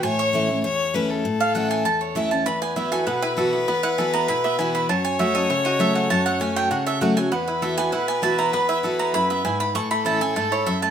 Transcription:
<<
  \new Staff \with { instrumentName = "Mandolin" } { \time 4/4 \key e \major \tempo 4 = 198 gis''8 cis''8 r2. | r8 f''8 fis''8 gis''8 a''8 cis''8 e''8 a''8 | b''8 gis''8 e''8 gis''8 fis''8 b'8 r4 | r8 fis''8 gis''8 ais''8 b''8 e''8 gis''8 b''8 |
a''8 gis''8 e''8 dis''8 cis''8 dis''8 e''8 fis''8 | a''8 fis''8 gis''8 g''8 fis''8 e''8 fis''8 gis''8 | fis''8 b'8 e''8 gis''8 fis''8 gis''8 a''8 ais''8 | b''8 e''8 r8 ais''8 b''8 e''8 gis''8 b''8 |
cis'''8 b''8 a''8 gis''8 a''8 cis''8 e''8 a''8 | }
  \new Staff \with { instrumentName = "Fiddle" } { \time 4/4 \key e \major cis''2 cis''4 b'8 a'8~ | a'2.~ a'8 r8 | b'1~ | b'1 |
cis''1~ | cis''2.~ cis''8 r8 | b'1~ | b'1 |
a'1 | }
  \new Staff \with { instrumentName = "Five-string banjo" } { \time 4/4 \key e \major r1 | r1 | e8 b8 e'8 a'8 b8 e'8 a'8 b8 | b8 e'8 a'8 b8 e'8 b8 e'8 e'8 |
fis4 fis'8 a'8 a8 fis'8 a'8 a8 | fis'8 a8 cis'8 a8 fis'8 a'8 fis'8 a8 | b8 e'8 a'8 b8 e'8 b8 e'8 e'8 | b8 e'8 a'8 b8 e'8 b8 e'8 e'8 |
e8 a8 e'8 a'8 a8 e'8 a'8 a8 | }
  \new Staff \with { instrumentName = "Steel-string acoustic guitar" } { \time 4/4 \key e \major << { r4 <e a cis' e'>8 <cis' e'>8 r4 <e a cis' e'>4 | r4 <e a cis' e'>4 r4 <e a cis' e'>8 <cis' e'>8 | r4 <e b e' fis'>8 <e' fis'>8 r4 <e b e' fis'>8 <e' fis'>8 | r4 <e b e' fis'>4 r4 <e b e' fis'>4 |
r4 <fis a cis' fis'>8 <cis' fis'>8 r4 <fis a cis' fis'>4 | r4 <fis a cis' fis'>4 r4 <fis a cis' fis'>8 <cis' fis'>8 | r4 <e b e' fis'>8 <e' fis'>8 r4 <e b e' fis'>4 | r4 <e b e' fis'>4 r2 |
r4 <e a cis' e'>8 <cis' e'>8 r2 | } \\ { a,2 e,2 | a,2 e,2 | e,2 b,2 | e,2 b,2 |
fis,2 cis2 | fis,2 cis2 | e,2 b,2 | e,2 fis,4 gis,4 |
a,2 gis,4 fis,4 | } >> }
>>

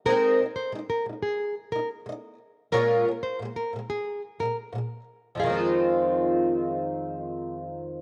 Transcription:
<<
  \new Staff \with { instrumentName = "Nylon-string guitar" } { \time 4/4 \key f \minor \tempo 4 = 90 bes'8 r16 c''16 r16 bes'16 r16 aes'8 r16 bes'16 r4 r16 | bes'8 r16 c''16 r16 bes'16 r16 aes'8 r16 bes'16 r4 r16 | aes'2. r4 | }
  \new Staff \with { instrumentName = "Twelve-string acoustic guitar" } { \clef bass \time 4/4 \key f \minor <aes c' ees' bes'>8 <aes ees'>8 <aes ees'>8 <aes ees'>8 r8 <aes ees'>8 <aes ees'>8 r8 | <bes, aes des' f' bes'>8 <bes, aes>8 <bes, aes>8 <bes, aes>8 r8 <bes, aes>8 <bes, aes>8 r8 | <f, ees f aes c' f'>1 | }
>>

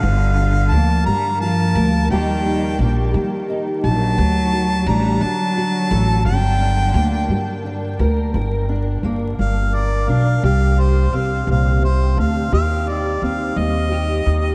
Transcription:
<<
  \new Staff \with { instrumentName = "Harmonica" } { \time 6/8 \key g \minor \tempo 4. = 58 f''4 a''8 bes''8 a''4 | g''4. r4 a''8~ | a''4 bes''8 a''4. | g''2 r4 |
r4. f''8 d''8 f''8 | f''8 c''8 f''8 f''8 c''8 f''8 | f''8 d''8 f''8 ees''4. | }
  \new Staff \with { instrumentName = "Steel-string acoustic guitar" } { \time 6/8 \key g \minor << { r8 f'8 bes4 f'8 bes'8 | <g bes ees' g'>8 ees'8 bes4 ees'4 | r8 fis'8 d'4 fis'8 a'8 | r8 d'8 bes4 d'8 bes'8 |
bes'8 d'8 bes4 bes'8 d'8 | g'4 c'2 | g'8 ees'8 c'4 g'8 ees'8 | } \\ { g,4 r8 g4 r8 | ees4 r8 g4 r8 | d4 r8 fis4 r8 | g,4 r8 g4 r8 |
g,4 r8 g4 r8 | c4 r8 bes,8 c8 d8 | ees4 r8 g4 r8 | } >> }
  \new Staff \with { instrumentName = "Cello" } { \clef bass \time 6/8 \key g \minor d4 f8 g8 f4 | ees4. r4 fis8~ | fis4 g8 fis4. | d2 r4 |
r2. | r2. | r2. | }
  \new Staff \with { instrumentName = "Upright bass" } { \clef bass \time 6/8 \key g \minor g,,4 d,8 g,4 d,8 | ees,4 bes,,8 ees4 bes,,8 | d,4 a,,8 d4 a,,8 | g,,4 d,8 g,4 d,8 |
g,,4 g,,8 g,,4 b,,8 | c,4 c,8 c,4 d,8 | ees,4 ees,8 ees,4 ees,8 | }
>>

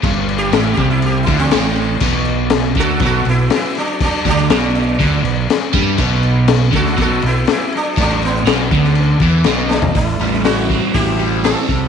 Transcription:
<<
  \new Staff \with { instrumentName = "Sitar" } { \time 4/4 \key a \dorian \tempo 4 = 121 \tuplet 3/2 { r4 g'8 e'8 g'8 e'8 g'8 e'8 c'8~ } c'4 | r4. a'8 a'8 e'8 e'8 d'8 | d'8 d'2. r8 | r4. a'8 a'8 e'8 e'8 d'8 |
d'8 b2. d'8 | e'4 fis'4 g'4 a'4 | }
  \new Staff \with { instrumentName = "Sitar" } { \time 4/4 \key a \dorian r2 \tuplet 3/2 { r4 e8~ } e4~ | e8 r4 fis'8 fis'8 b8 b8 fis8 | fis8 fis2. r8 | r4. fis'8 fis'8 b8 b8 fis8 |
fis8 r2. r8 | r1 | }
  \new Staff \with { instrumentName = "Overdriven electric guitar" } { \clef bass \time 4/4 \key a \dorian g,4 a,8 c4 d8 a,4 | b,4. d8 b,8 b,8 r4 | r8 d8 b,4 d8 b,8 r8 g8 | b,4. d8 b,8 b,8 r4 |
a,4 b,8 d4 e8 b,4 | a,8 g8 e'8 c'8 e'8 g8 c'8 c8 | }
  \new Staff \with { instrumentName = "Fingered electric bass" } { \clef bass \time 4/4 \key a \dorian g,,4 a,,8 c,4 d,8 a,,4 | b,,4. d,8 b,,8 b,,8 r4 | r8 d,8 b,,4 d,8 b,,8 r8 g,8 | b,,4. d,8 b,,8 b,,8 r4 |
a,,4 b,,8 d,4 e,8 b,,4 | a,,8 a,,4. a,,4. c,8 | }
  \new DrumStaff \with { instrumentName = "Drums" } \drummode { \time 4/4 <cymc bd>8 cymc8 <cymc sn>8 <cymc bd>8 cymc8 <cymc bd>8 <cymc sn>8 cymc8 | <cymc bd>8 cymc8 <cymc sn>8 <cymc bd>8 <cymc bd>8 cymc8 <cymc sn>8 <cymc sn>8 | <cymc bd>8 <cymc bd>8 <cymc sn>8 cymc8 <cymc bd>8 cymc8 <cymc sn>8 <cymc bd>8 | <cymc bd>8 cymc8 <cymc sn>8 <cymc bd>16 sn16 <cymc bd>8 cymc8 <cymc sn>8 cymc8 |
<cymc bd>8 cymc8 <cymc sn>8 <cymc bd>16 sn16 cymc8 <cymc bd>8 <cymc sn>8 sn16 tomfh16 | <hho bd>8. sn16 <hho sn>8 bd8 <hho bd>4 <hho sn>8 <bd sn>8 | }
>>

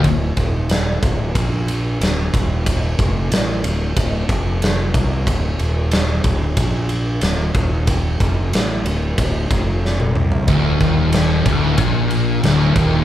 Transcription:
<<
  \new Staff \with { instrumentName = "Distorted electric guitar" } { \clef bass \time 4/4 \key c \mixolydian \tempo 4 = 92 r1 | r1 | r1 | r1 |
d,8 ees,4 d,8 bes,4 d,8 ees,8 | }
  \new Staff \with { instrumentName = "Distorted electric guitar" } { \clef bass \time 4/4 \key c \mixolydian r1 | r1 | r1 | r1 |
d,8 ees,4 d,8 bes,4 d,8 ees,8 | }
  \new Staff \with { instrumentName = "Fingered electric bass" } { \clef bass \time 4/4 \key c \mixolydian d,,8 ees,,4 d,,8 bes,,4 d,,8 ees,,8~ | ees,,8 f,,8 a,,8 d,,8 d,,8 f,,4 c,8 | d,,8 ees,,4 d,,8 bes,,4 d,,8 ees,,8~ | ees,,8 f,,8 a,,8 d,,8 d,,8 f,,4 c,8 |
d,,8 ees,,4 d,,8 bes,,4 d,,8 ees,,8 | }
  \new DrumStaff \with { instrumentName = "Drums" } \drummode { \time 4/4 <bd cymr>8 <bd cymr>8 <cymr sn>8 <bd cymr>8 <bd cymr>8 cymr8 <cymr sn>8 <bd cymr>8 | <bd cymr>8 <bd cymr>8 <cymr sn>8 cymr8 <bd cymr>8 <bd cymr>8 <cymr sn>8 <bd cymr>8 | <bd cymr>8 cymr8 <cymr sn>8 <bd cymr>8 <bd cymr>8 cymr8 <cymr sn>8 <bd cymr>8 | <bd cymr>8 <bd cymr>8 <cymr sn>8 cymr8 <bd cymr>8 <bd cymr>8 sn16 tommh16 toml16 tomfh16 |
<bd cymr>8 <bd cymr>8 <cymr sn>8 <bd cymr>8 <bd cymr>8 cymr8 <cymr sn>8 <bd cymr>8 | }
>>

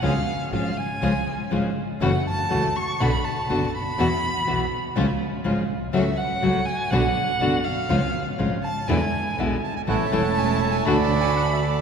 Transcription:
<<
  \new Staff \with { instrumentName = "Violin" } { \time 4/4 \key cis \phrygian \tempo 4 = 122 eis''4 eis''8 gis''4. r4 | fis''8 a''4 cis'''8 b''8 a''4 b''8~ | b''2~ b''8 r4. | e''8 fis''4 gis''8 fis''4. eis''8~ |
eis''4 r8 a''8 gis''4. r8 | \key a \major a''2 b''2 | }
  \new Staff \with { instrumentName = "Bandoneon" } { \time 4/4 \key cis \phrygian << { r1 | r1 | r1 | r1 |
r2. r8 a''16 gis''16 | \key a \major \tuplet 3/2 { fis''8 e''8 fis''8 gis''8 a''8 gis''8 fis''8 a''8 gis''8 fis''8 e''8 d''8 } | } \\ { r1 | r1 | r1 | r1 |
r1 | <a' cis''>2 <a' d''>2 | } >> }
  \new Staff \with { instrumentName = "String section" } { \time 4/4 \key cis \phrygian <cis' eis' gis'>8 r8 <cis' eis' gis'>8 r8 <cis' eis' gis'>8 r8 <cis' eis' gis'>8 r8 | <a e' fis'>8 r8 <a e' fis'>8 r8 <b d' fis'>8 r8 <b d' fis'>8 r8 | <b e' fis'>8 r8 <b e' fis'>8 r8 <gis cis' eis'>8 r8 <gis cis' eis'>8 r8 | <a cis' fis'>8 r8 <a cis' fis'>8 r8 <b d' fis'>8 r8 <b d' fis'>8 r8 |
<gis cis' eis'>8 r8 <gis cis' eis'>8 r8 <gis d' e'>8 r8 <gis d' e'>8 r8 | \key a \major <a cis' e'>8 <a cis' e'>4. <a d' fis'>2 | }
  \new Staff \with { instrumentName = "Nylon-string guitar" } { \time 4/4 \key cis \phrygian <cis eis gis cis' eis'>8 r8 <cis eis gis cis' eis'>8 r8 <cis eis gis cis' eis'>8 r8 <cis eis gis cis' eis'>8 r8 | <cis e a cis' fis'>8 r8 <cis e a cis' fis'>8 r8 <b, d b d' fis'>8 r8 <b, d b d' fis'>8 r8 | <b, e b e' fis'>8 r8 <b, e b e' fis'>8 r8 <cis eis gis cis' eis'>8 r8 <cis eis gis cis' eis'>8 r8 | <cis fis a cis' fis'>8 r8 <cis fis a cis' fis'>8 r8 <b, d b d' fis'>8 r8 <b, d b d' fis'>8 r8 |
<cis eis gis cis' eis'>8 r8 <cis eis gis cis' eis'>8 r8 <b, d gis b e'>8 r8 <b, d gis b e'>8 r8 | \key a \major <e a cis' e'>8 <e a cis' e'>8 r4 <d a d' fis'>8 r4. | }
  \new Staff \with { instrumentName = "Double bass" } { \clef bass \time 4/4 \key cis \phrygian cis,8 r8 gis,,8 r8 cis,8 r8 gis,,8 r8 | fis,,8 r8 cis,8 r8 b,,8 r8 fis,,8 r8 | e,8 r8 b,,8 r8 cis,8 r8 gis,,8 b,,8 | cis,8 r8 cis,8 r8 b,,8 r8 fis,,8 r8 |
cis,8 r8 gis,,8 r8 e,8 r8 b,,8 r8 | \key a \major a,,8 e,,4. d,2 | }
>>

